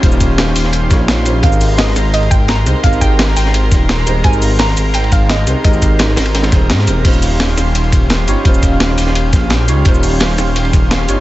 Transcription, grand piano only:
X:1
M:4/4
L:1/8
Q:1/4=171
K:Ab
V:1 name="Grand piano"
[G,DEFc]4- [G,DEFc] [G,DEFd]2 [G,DEFc] | [A,CEGB]4- [A,CEGB] z2 [A,CEGc] | [A,CEGB]4- [A,CEGB] z2 [A,CEGc] | [G,A,CEB]4- [G,A,CEB] z2 [A,CEGc] |
[A,CEGB]4- [A,CEGB] [A,CEGc]2 [A,CEGB] | [G,DEFc]4- [G,DEFc] z2 [G,DEFd] | [G,DEFc]4- [G,DEFc] z2 [G,DEFd] | [G,DEFc]4- [G,DEFc] z2 [G,DEFd] |]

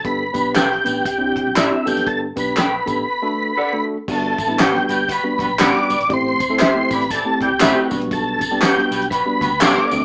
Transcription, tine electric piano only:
X:1
M:4/4
L:1/16
Q:"Swing" 1/4=119
K:G
V:1 name="Tine electric piano"
[B,DGA] z [B,DGB]2 z2 [B,DGB]2 z [CDEG]2 z2 [CDEF] [B,DGA]2- | [B,DGA] z [B,DGB]2 z2 [B,DGA]2 z [A,DFA]2 z2 [A,DFA]2 z | [G,B,DF]2 z [G,B,DE] z [G,B,DF]2 z2 [G,B,DF]2 z [G,B,DF]2 z2 | [A,CEG]2 z [A,CEA] z [A,CEG]2 z2 [A,CEG]2 z [A,CEF]2 [G,B,DF]2- |
[G,B,DF]2 z [G,B,DG] z [G,B,DF]2 z2 [G,B,DF]2 z [G,B,DA]2 [A,CDF]2 |]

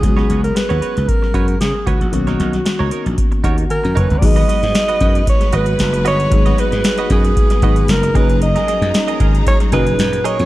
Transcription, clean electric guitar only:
X:1
M:4/4
L:1/16
Q:"Swing 16ths" 1/4=115
K:G#dor
V:1 name="Clean electric guitar"
z [FBc] [FBc] z2 [FBc] [FBc] z3 [FBc] z3 [FBc] z | z [DAc] [DAc] z2 [DAc] [DAc] z3 [DAc] z3 [DAc] z | z [FBd] [FBd] z2 [FBd] [FBd] z3 [FBd] z3 [FBd] z | z [FBd] [FBd] z2 [FBd] [FBd] z3 [FBd] z3 [GAd] z |
z [GAd] [GAd] z2 [GAd] [GAd] z3 [GAd] z3 [GAd] z |]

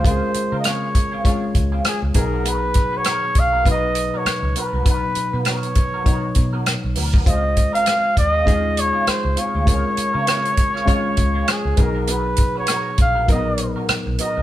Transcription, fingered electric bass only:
X:1
M:4/4
L:1/16
Q:"Swing 16ths" 1/4=100
K:Db
V:1 name="Fingered electric bass" clef=bass
D,, z2 D,4- D, z2 D,,2 z D,, _C,,2- | _C,,3 z3 C,,4- C,, z2 D,, z =C,, | _C,, z2 _C,4- C, z2 C,3 C,, =D,,2 | D,,3 z3 E,,4- E,, z2 D,, z =D,, |
D,, z2 D,4- D, z2 D,,2 z D,, _C,,2- | _C,,3 z3 B,,,4- B,,, z2 C,, z =C,, |]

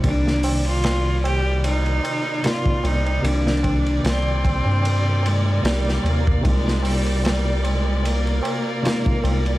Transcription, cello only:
X:1
M:4/4
L:1/16
Q:"Swing 16ths" 1/4=75
K:Cm
V:1 name="Cello"
D3 F3 G2 E4 F2 E2 | D4 C6 A,2 G,2 B,2 | A,2 G,2 G,2 A,2 B,8 |]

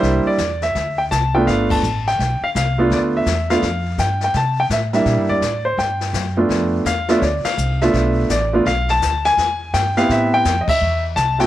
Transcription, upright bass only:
X:1
M:4/4
L:1/8
Q:"Swing" 1/4=167
K:Gmix
V:1 name="Upright bass" clef=bass
C,, z E,,2 D,,2 C,,2 | G,,,2 A,,,2 B,,, z C,,2 | D,,2 E,,2 F,,2 G,,2 | C,2 A,,2 (3_B,, G,, E,, A,,2 |
G,,2 ^F,,2 =F,,2 E,,2 | D,, z C,,2 B,,,2 A,,,2 | B,,,2 D,,2 E,,2 G,,2 | A,,2 F,, z E,,2 C,,2 |]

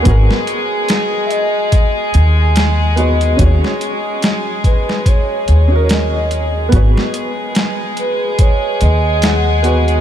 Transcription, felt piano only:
X:1
M:4/4
L:1/16
Q:"Swing 16ths" 1/4=72
K:G#m
V:1 name="Felt piano"
[B,FA]12- [B,FA]2 [B,FB]2 | [CFc]8- [CFc]3 [CFA]4- [CFA] | [B,FB]12- [B,FB]2 [B,FB]2 |]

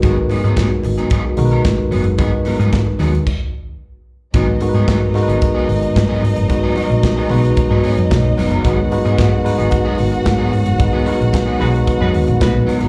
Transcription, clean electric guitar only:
X:1
M:4/4
L:1/16
Q:1/4=112
K:G#dor
V:1 name="Clean electric guitar"
[F,B,DG] z [F,B,DG] [F,B,DG] [F,B,DG] z2 [F,B,DG] [F,B,DG] z2 [F,B,DA] z2 [F,B,DG] z | [F,B,DG] z [F,B,DA] [F,B,DG] z2 [F,B,DG] z8 z | [F,B,DG] z2 [F,B,DG] [F,B,DG] z2 [F,B,DG] z [F,B,DG] z3 [F,B,DG] z2 | z [F,B,DG] [F,B,DA] z2 [F,B,DG] [F,B,DG] z2 [F,B,DG] [F,B,DG] z3 [F,B,DA] [F,B,DA] |
[F,B,DG] z2 [F,B,DG] [F,B,DG] z2 [F,B,DG] z [F,B,DG] z3 [F,B,DG] z2 | z [F,B,DG] [F,B,DA] z2 [F,B,DG] [F,B,DG] z2 [F,B,DG] z4 [F,B,DA] [F,B,DA] |]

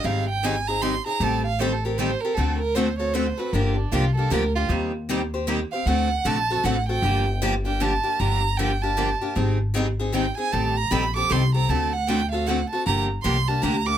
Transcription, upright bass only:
X:1
M:3/4
L:1/8
Q:"Swing" 1/4=154
K:Gm
V:1 name="Upright bass" clef=bass
_A,,,6 | A,,,6 | D,,6 | G,,,2 C,,2 D,,2 |
E,,6 | D,,2 B,,,2 A,,,2 | G,,,6 | G,,,6 |
_A,,,6 | A,,,2 B,,,2 C,,2 | D,,6 | G,,,2 C,,2 D,,2 |]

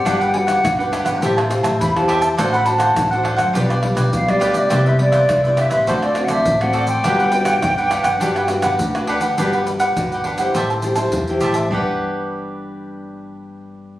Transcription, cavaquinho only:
X:1
M:4/4
L:1/16
Q:1/4=103
K:G
V:1 name="Cavaquinho"
[DGBf] [GBf] z [GBf]2 [GBf] [DGBf] [GBf] [Gcea] [cea] z [cea]3 [Gcea] [cea] | [DAcf] [Acf] z [Acf]2 [Acf] [DAcf] [Acf] [=FGBd] [GBd] z [GBd]3 [FGBd] [GBd] | [GBce] [Bce] z [Bce]2 [Bce] [GBce] [Bce] [FAcd] [Acd] z [Acd]3 [FAcd] [Acd] | [DGBf] [GBf] z [GBf]2 [GBf] [DGBf] [GBf] [DGBf] [GBf] z [GBf]3 [DGBf] [GBf] |
[DGBf] [GBf] z [GBf]2 [GBf] [DGBf] [GBf] [Gcea] [cea] z [cea]3 [Gcea] [cea] | [DGBf]16 |]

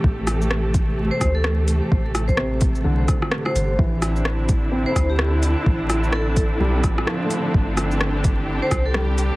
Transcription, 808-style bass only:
X:1
M:4/4
L:1/8
Q:"Swing 16ths" 1/4=128
K:Am
V:1 name="808-style bass" clef=bass
A,,,4 z D,,2 z | A,,,4 B,,, z2 G,,, | A,,,4 z D,,2 z | A,,,4 B,,, A,,, z2 |
G,,,4 z C,,2 z |]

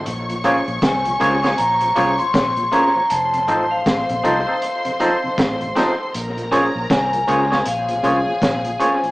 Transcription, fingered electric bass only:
X:1
M:4/4
L:1/16
Q:"Swing 16ths" 1/4=79
K:Bbm
V:1 name="Fingered electric bass" clef=bass
B,,,3 B,,, C,,2 D,,2 B,,,2 C,, z B,,,2 z2 | F,,,2 =A,,,2 A,,, B,,, C,, z4 z A,,,2 z2 | B,,,3 B,,, C,,2 D,,2 B,,,2 C,, z B,,,2 z2 |]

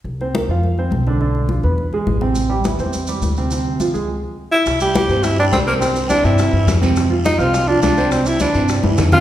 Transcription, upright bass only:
X:1
M:4/4
L:1/8
Q:1/4=208
K:C
V:1 name="Upright bass" clef=bass
C,,3 F,,3 B,,,2- | B,,,3 E,,3 A,,,2- | A,,,3 E,,3 D,,2- | D,,3 _D,,2 z3 |
C,,3 G,,3 C,,2- | C,,3 G,,2 G,, F,,2- | F,,3 C,,3 C,,2- | C,,3 G,,2 G,, F,,2 |]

